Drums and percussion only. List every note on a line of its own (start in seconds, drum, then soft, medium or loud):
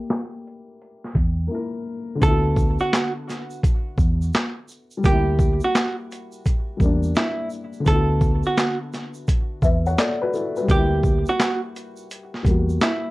0.10 snare loud
0.10 clap medium
0.10 closed hi-hat medium
0.47 closed hi-hat soft
0.82 closed hi-hat medium
1.04 snare soft
1.15 kick medium
1.15 closed hi-hat soft
2.22 kick loud
2.22 closed hi-hat medium
2.22 shaker medium
2.56 kick medium
2.56 shaker soft
2.58 shaker soft
2.79 shaker medium
2.93 snare loud
2.93 clap medium
2.93 closed hi-hat medium
2.93 shaker medium
3.29 snare soft
3.29 closed hi-hat soft
3.29 shaker soft
3.50 shaker medium
3.63 kick medium
3.63 closed hi-hat medium
3.63 shaker medium
3.98 kick medium
3.98 shaker soft
4.22 shaker soft
4.33 snare loud
4.33 clap medium
4.33 closed hi-hat medium
4.33 shaker medium
4.68 shaker medium
4.71 shaker soft
4.91 shaker soft
5.04 kick loud
5.04 closed hi-hat medium
5.04 shaker medium
5.39 kick medium
5.39 shaker soft
5.39 shaker medium
5.60 shaker medium
5.75 snare loud
5.75 clap medium
5.75 closed hi-hat medium
5.75 shaker medium
6.11 closed hi-hat soft
6.11 shaker soft
6.32 shaker soft
6.46 kick medium
6.46 closed hi-hat medium
6.46 shaker medium
6.80 kick medium
6.80 shaker soft
7.03 shaker medium
7.15 snare loud
7.15 clap medium
7.15 closed hi-hat medium
7.15 shaker medium
7.50 shaker medium
7.53 shaker soft
7.73 shaker soft
7.86 kick loud
7.86 closed hi-hat medium
7.86 shaker medium
8.21 kick medium
8.21 shaker soft
8.23 shaker medium
8.43 shaker soft
8.57 snare loud
8.57 clap loud
8.57 closed hi-hat medium
8.57 shaker medium
8.93 snare soft
8.93 closed hi-hat soft
8.93 shaker soft
9.14 shaker medium
9.28 kick medium
9.28 closed hi-hat medium
9.28 shaker medium
9.62 kick medium
9.62 shaker soft
9.62 shaker medium
9.86 shaker medium
9.98 snare loud
9.98 clap medium
9.98 closed hi-hat medium
9.98 shaker medium
10.33 shaker soft
10.35 shaker soft
10.56 shaker soft
10.68 kick loud
10.68 closed hi-hat medium
10.68 shaker medium
11.03 kick medium
11.03 shaker soft
11.05 shaker soft
11.26 shaker medium
11.40 snare loud
11.40 clap medium
11.40 closed hi-hat medium
11.40 shaker medium
11.76 closed hi-hat soft
11.76 shaker soft
11.97 shaker soft
12.11 closed hi-hat medium
12.11 shaker medium
12.34 snare soft
12.45 kick medium
12.45 closed hi-hat soft
12.45 shaker soft
12.69 shaker soft
12.81 snare loud
12.81 clap loud
12.81 closed hi-hat medium
12.81 shaker medium